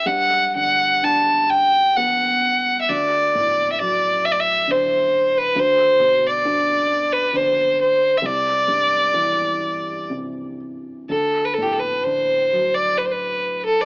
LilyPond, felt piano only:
\new Staff \with { instrumentName = "Felt piano" } { \clef bass \time 3/4 \key d \mixolydian \tempo 4 = 66 g,8 d8 d'4 b4 | d,8 a,8 fis4 d4 | d,8 b,8 d'4 d4 | c,8 g,8 e4 c4 |
d,8 a,8 d8 fis4. | }